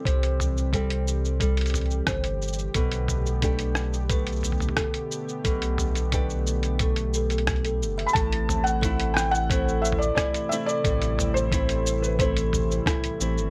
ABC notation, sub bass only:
X:1
M:4/4
L:1/16
Q:1/4=89
K:Am
V:1 name="Sub bass" clef=bass
C,,12 G,,,4 | B,,,12 z4 | B,,,12- B,,,2 ^F,,,2 | A,,,12 z4 |
A,,,12 z2 A,,, G,,, |]